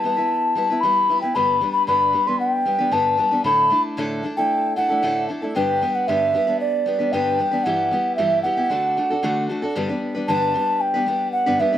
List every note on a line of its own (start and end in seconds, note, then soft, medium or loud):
0.00 0.17 G3 soft
0.00 0.82 A5 medium
0.05 0.17 B3 soft
0.05 0.17 E4 soft
0.05 0.15 B4 soft
0.17 0.55 B3 soft
0.17 0.56 E4 soft
0.17 0.56 B4 soft
0.55 0.69 G3 soft
0.55 0.69 B3 medium
0.55 0.70 E4 medium
0.55 0.69 B4 medium
0.70 0.82 B3 soft
0.70 0.83 E4 soft
0.70 0.83 B4 soft
0.80 1.08 G3 medium
0.80 1.08 B3 medium
0.80 1.09 E4 medium
0.80 1.21 B5 medium
0.85 1.10 B4 medium
1.09 1.22 G3 soft
1.09 1.22 B3 soft
1.09 1.22 E4 soft
1.09 1.21 B4 medium
1.21 1.35 B3 soft
1.21 1.36 E4 soft
1.21 1.35 B4 soft
1.21 1.36 G5 medium
1.35 1.61 G2 medium
1.35 1.61 D3 medium
1.35 1.60 G3 medium
1.35 1.61 B3 medium
1.35 1.62 D4 medium
1.35 1.62 B4 medium
1.35 1.71 B5 medium
1.61 1.87 G3 soft
1.61 1.87 B3 soft
1.61 1.88 D4 soft
1.61 1.88 B4 soft
1.72 1.85 B5 medium
1.87 2.13 G2 medium
1.87 2.14 D3 medium
1.87 2.12 G3 medium
1.87 2.13 B3 medium
1.87 2.14 D4 medium
1.87 2.14 B4 medium
1.87 2.29 B5 medium
2.13 2.26 G3 soft
2.13 2.27 B3 soft
2.13 2.26 D4 soft
2.13 2.26 B4 soft
2.27 2.64 G3 soft
2.27 2.65 B3 soft
2.27 2.66 D4 soft
2.27 2.66 B4 soft
2.27 2.39 C6 medium
2.39 2.94 G5 medium
2.65 2.79 G3 soft
2.65 2.79 B3 soft
2.65 2.78 D4 soft
2.65 2.77 B4 medium
2.78 2.91 G3 soft
2.78 2.91 B3 soft
2.78 2.92 D4 soft
2.78 2.92 B4 soft
2.91 3.18 G2 medium
2.91 3.18 D3 medium
2.91 3.16 G3 medium
2.91 3.17 B3 medium
2.91 3.18 D4 medium
2.91 3.19 B4 medium
2.91 3.44 A5 medium
3.17 3.31 G3 soft
3.17 3.31 B3 soft
3.17 3.31 D4 medium
3.17 3.30 B4 medium
3.31 3.44 G3 soft
3.31 3.44 B3 soft
3.31 3.43 D4 soft
3.31 3.45 B4 soft
3.44 3.71 A2 medium
3.44 3.71 D3 medium
3.44 3.69 A3 medium
3.44 3.70 D4 medium
3.44 3.71 E4 medium
3.44 3.71 A4 medium
3.44 3.81 B5 medium
3.70 3.97 A3 soft
3.70 3.97 D4 medium
3.70 3.97 E4 soft
3.70 3.98 A4 soft
3.97 4.24 A2 medium
3.97 4.24 D3 medium
3.97 4.22 A3 medium
3.97 4.23 D4 medium
3.97 4.24 E4 medium
3.97 4.24 A4 medium
4.23 4.37 A3 soft
4.23 4.37 D4 soft
4.23 4.37 E4 medium
4.23 4.36 A4 soft
4.37 4.75 A3 soft
4.37 4.75 D4 soft
4.37 4.76 E4 soft
4.37 4.76 A4 soft
4.37 4.74 G5 medium
4.76 4.89 A3 soft
4.76 4.90 D4 soft
4.76 4.89 E4 soft
4.76 4.88 A4 medium
4.76 5.25 F#5 medium
4.89 5.02 A3 soft
4.89 5.02 D4 soft
4.89 5.03 E4 soft
4.89 5.02 A4 soft
5.02 5.29 A2 medium
5.02 5.29 D3 medium
5.02 5.27 A3 medium
5.02 5.28 D4 medium
5.02 5.30 E4 medium
5.02 5.30 A4 medium
5.29 5.42 A3 soft
5.29 5.42 D4 soft
5.29 5.42 E4 soft
5.29 5.41 A4 soft
5.42 5.55 A3 soft
5.42 5.55 D4 soft
5.42 5.56 E4 soft
5.42 5.55 A4 soft
5.55 5.81 G2 medium
5.55 5.82 D3 medium
5.55 5.80 G3 medium
5.55 5.81 B3 medium
5.55 5.82 D4 medium
5.55 5.82 B4 medium
5.55 5.96 G5 medium
5.82 6.08 G3 soft
5.82 6.08 B3 soft
5.82 6.08 D4 medium
5.82 6.09 B4 medium
5.95 6.09 F#5 medium
6.07 6.34 G2 medium
6.07 6.34 D3 medium
6.07 6.33 G3 medium
6.07 6.33 B3 medium
6.07 6.34 D4 medium
6.07 6.35 B4 medium
6.07 6.59 E5 medium
6.34 6.47 G3 soft
6.34 6.47 B3 soft
6.34 6.47 D4 medium
6.34 6.46 B4 soft
6.47 6.85 G3 soft
6.47 6.86 B3 soft
6.47 6.87 D4 soft
6.47 6.86 B4 soft
6.60 7.14 D5 medium
6.86 6.99 G3 medium
6.86 6.99 B3 soft
6.86 6.98 D4 soft
6.86 6.97 B4 medium
6.99 7.12 G3 soft
6.99 7.12 B3 soft
6.99 7.13 D4 soft
6.99 7.12 B4 soft
7.12 7.39 G2 medium
7.12 7.39 D3 medium
7.12 7.37 G3 medium
7.12 7.38 B3 medium
7.12 7.39 D4 medium
7.12 7.40 B4 medium
7.12 7.65 G5 medium
7.38 7.52 G3 soft
7.38 7.52 B3 soft
7.38 7.51 D4 medium
7.38 7.50 B4 medium
7.51 7.65 G3 soft
7.51 7.65 B3 soft
7.51 7.66 D4 soft
7.51 7.65 B4 soft
7.63 7.92 G2 medium
7.63 7.92 E3 medium
7.63 7.90 G3 medium
7.63 7.91 B3 medium
7.63 7.92 E4 medium
7.63 7.92 G4 medium
7.63 8.15 F#5 medium
7.91 8.17 G3 soft
7.91 8.17 B3 medium
7.91 8.18 E4 soft
7.91 8.18 G4 medium
8.16 8.44 G2 medium
8.16 8.44 E3 medium
8.16 8.43 G3 medium
8.16 8.43 B3 medium
8.16 8.44 E4 medium
8.16 8.45 G4 medium
8.16 8.41 E5 medium
8.42 8.57 G3 soft
8.42 8.58 B3 soft
8.42 8.56 E4 soft
8.42 8.56 G4 medium
8.42 9.45 F#5 medium
8.57 8.70 G3 soft
8.57 8.70 B3 soft
8.57 8.71 E4 soft
8.57 8.70 G4 soft
8.70 8.96 D3 medium
8.70 8.96 A3 medium
8.70 8.97 D4 medium
8.70 8.97 F#4 medium
8.70 8.97 A4 medium
8.97 9.10 A3 soft
8.97 9.11 D4 soft
8.97 9.10 F#4 soft
8.97 9.09 A4 soft
9.10 9.23 D4 soft
9.10 9.23 F#4 soft
9.10 9.23 A4 medium
9.23 9.49 D3 medium
9.23 9.48 A3 medium
9.23 9.49 D4 medium
9.23 9.50 F#4 medium
9.23 9.50 A4 medium
9.49 9.62 A3 soft
9.49 9.63 D4 soft
9.49 9.62 F#4 medium
9.49 9.61 A4 medium
9.62 9.76 D4 soft
9.62 9.76 F#4 soft
9.62 9.76 A4 medium
9.75 9.89 G2 medium
9.75 9.89 D3 medium
9.75 9.89 G3 medium
9.75 9.89 B3 medium
9.75 9.88 D4 medium
9.75 9.87 B4 medium
9.89 10.16 G3 soft
9.89 10.15 B3 soft
9.89 10.14 D4 soft
9.89 10.13 B4 medium
10.15 10.27 G3 soft
10.15 10.28 B3 soft
10.15 10.29 D4 soft
10.15 10.28 B4 medium
10.28 10.55 G2 medium
10.28 10.55 D3 medium
10.28 10.53 G3 medium
10.28 10.54 B3 medium
10.28 10.54 D4 medium
10.28 10.55 B4 medium
10.28 10.82 A5 medium
10.54 10.94 G3 medium
10.54 10.94 B3 medium
10.54 10.94 D4 medium
10.54 10.93 B4 medium
10.81 11.31 G5 medium
10.94 11.05 G3 soft
10.94 11.07 B3 soft
10.94 11.07 D4 soft
10.94 11.07 B4 medium
11.06 11.46 G3 soft
11.06 11.46 B3 medium
11.06 11.45 D4 medium
11.06 11.45 B4 medium
11.32 11.61 F#5 medium
11.46 11.60 G2 medium
11.46 11.60 D3 medium
11.46 11.58 G3 soft
11.46 11.59 B3 medium
11.46 11.60 D4 medium
11.46 11.60 B4 medium
11.59 11.73 G3 soft
11.59 11.73 B3 soft
11.59 11.72 D4 medium
11.59 11.71 B4 medium
11.59 11.78 E5 medium
11.72 11.78 G3 soft
11.72 11.78 B3 soft
11.72 11.78 D4 soft
11.72 11.78 B4 soft